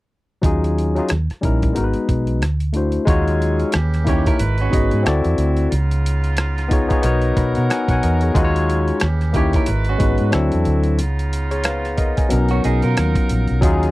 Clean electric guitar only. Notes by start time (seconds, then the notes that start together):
4.09 C#4 G4
4.27 E4 A#4
4.61 C#4 F#4
9.36 C#4 G4
9.56 E4 A#4
9.89 C#4 F#4
12.51 C#4 F#4
12.65 D#4 G#4
12.84 F4 A#4